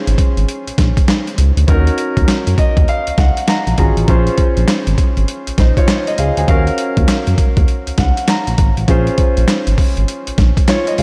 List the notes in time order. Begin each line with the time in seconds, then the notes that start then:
Already playing: C#4 F4 G#4 C5
0.07 G#1, closed hi-hat
0.18 kick, closed hi-hat
0.37 G#1, closed hi-hat
0.49 closed hi-hat
0.67 A#1, closed hi-hat
0.78 A#1, kick, snare, closed hi-hat
0.97 kick, closed hi-hat
1.08 snare, closed hi-hat
1.27 closed hi-hat
1.38 C#2, closed hi-hat
1.57 D2, closed hi-hat
1.68 D#2 C#4 D#4 F#4 A#4, kick, closed hi-hat
1.87 closed hi-hat
1.98 closed hi-hat
2.17 D#2, kick, closed hi-hat
2.28 snare, closed hi-hat
2.47 F#2, closed hi-hat
2.58 D#5, kick, closed hi-hat
2.77 D#2, kick, closed hi-hat
2.88 F5, closed hi-hat
3.07 C#2, closed hi-hat
3.18 C#2 F#5, kick, snare, closed hi-hat
3.37 closed hi-hat
3.48 A#5, snare, closed hi-hat
3.67 A#1, closed hi-hat
3.78 G#1 C#4 F4 F#4 G#4 A#5, kick, closed hi-hat
3.97 A1, closed hi-hat
4.08 A#1 C#4 F4 G#4 C5, kick, closed hi-hat
4.27 closed hi-hat
4.38 kick, closed hi-hat
4.57 A#1, closed hi-hat
4.68 snare, clap, closed hi-hat
4.87 G#1, closed hi-hat
4.98 kick, closed hi-hat
5.17 G#1, closed hi-hat
5.28 closed hi-hat
5.47 A#1, closed hi-hat
5.58 A#1 D#4 C5, kick, snare, closed hi-hat
5.77 F4 C#5, kick, closed hi-hat
5.88 snare, clap, closed hi-hat
6.07 D#5, closed hi-hat
6.18 C#2 G#4 F5, closed hi-hat
6.37 D2 C5 G#5, closed hi-hat
6.48 D#2 C#4 F#4 A#4 F5, kick, closed hi-hat
6.67 closed hi-hat
6.78 closed hi-hat
6.97 D#2, kick, closed hi-hat
7.08 snare, clap, closed hi-hat
7.27 F#2, closed hi-hat
7.38 kick, closed hi-hat
7.57 D#2, kick, closed hi-hat
7.68 closed hi-hat
7.87 C#2, closed hi-hat
7.98 C#2 F#5, kick, snare, closed hi-hat
8.17 closed hi-hat
8.28 A#5, snare, clap, closed hi-hat
8.47 A#1, closed hi-hat
8.58 G#1, kick, closed hi-hat
8.77 A1, closed hi-hat
8.88 A#1 C#4 F4 G#4 C5, kick, closed hi-hat
9.07 closed hi-hat
9.18 kick, closed hi-hat
9.37 A#1, closed hi-hat
9.48 snare, clap, closed hi-hat
9.67 G#1, closed hi-hat
9.78 kick, open hi-hat
9.97 G#1, closed hi-hat
10.08 closed hi-hat
10.27 A#1, closed hi-hat
10.38 A#1, kick, snare, closed hi-hat
10.57 kick, closed hi-hat
10.68 F4 C#5, snare, clap, closed hi-hat
10.87 D#5, closed hi-hat
10.98 C#2 G#4 F5, open hi-hat